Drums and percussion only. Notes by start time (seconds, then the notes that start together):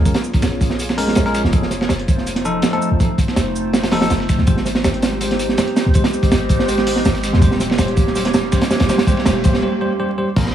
0.05 kick, closed hi-hat, shaker
0.14 snare, closed hi-hat
0.24 shaker
0.34 kick, snare, closed hi-hat
0.42 snare, closed hi-hat, shaker
0.61 kick, closed hi-hat, shaker
0.70 snare
0.79 closed hi-hat, shaker
0.89 snare
0.98 closed hi-hat, open hi-hat
1.08 snare
1.15 snare, closed hi-hat, shaker
1.26 snare, closed hi-hat
1.34 snare, closed hi-hat, shaker
1.45 snare
1.53 kick, closed hi-hat, shaker
1.62 snare
1.70 snare, closed hi-hat, shaker
1.81 snare
1.89 snare, closed hi-hat, shaker
1.99 closed hi-hat
2.08 kick, closed hi-hat, shaker
2.18 snare
2.27 closed hi-hat, shaker
2.35 snare, closed hi-hat
2.45 shaker
2.62 snare, closed hi-hat, shaker
2.73 closed hi-hat
2.82 shaker
3.00 kick, closed hi-hat, shaker
3.18 kick, closed hi-hat, shaker
3.28 snare
3.36 snare, closed hi-hat, shaker
3.56 shaker
3.73 snare, closed hi-hat, shaker
3.83 snare, closed hi-hat
3.91 snare, closed hi-hat, open hi-hat
4.01 snare, closed hi-hat
4.10 snare, closed hi-hat, shaker
4.20 snare
4.29 kick, snare, closed hi-hat, shaker
4.38 snare
4.47 kick, closed hi-hat, shaker
4.57 snare
4.66 snare, closed hi-hat, shaker
4.75 snare
4.84 snare, closed hi-hat, shaker
4.94 closed hi-hat
5.02 snare, closed hi-hat, shaker
5.12 snare
5.21 closed hi-hat, shaker
5.31 snare, closed hi-hat
5.39 closed hi-hat, shaker
5.49 snare
5.58 snare, closed hi-hat, shaker
5.68 closed hi-hat
5.76 snare, closed hi-hat, shaker
5.94 kick, closed hi-hat, shaker
6.04 snare, closed hi-hat
6.13 shaker
6.23 kick, snare, closed hi-hat
6.32 snare, closed hi-hat, shaker
6.49 kick, closed hi-hat, shaker
6.59 snare
6.68 closed hi-hat, shaker
6.78 snare
6.87 closed hi-hat, open hi-hat
6.96 snare
7.05 snare, closed hi-hat, shaker
7.15 snare, closed hi-hat
7.24 snare, closed hi-hat, shaker
7.34 snare
7.42 kick, closed hi-hat, shaker
7.51 snare
7.60 snare, closed hi-hat, shaker
7.70 snare
7.78 snare, closed hi-hat, shaker
7.88 closed hi-hat
7.97 kick, closed hi-hat, shaker
8.07 snare
8.15 closed hi-hat, shaker
8.25 snare, closed hi-hat
8.34 snare, closed hi-hat, shaker
8.52 kick, snare, closed hi-hat, shaker
8.61 snare, closed hi-hat
8.71 snare, closed hi-hat, shaker
8.80 snare, closed hi-hat
8.89 snare, closed hi-hat, shaker
8.98 snare, closed hi-hat
9.07 kick, closed hi-hat, shaker
9.17 snare
9.25 snare, closed hi-hat, shaker
9.44 kick, closed hi-hat, shaker
9.53 snare
10.36 kick, closed hi-hat, crash
10.46 snare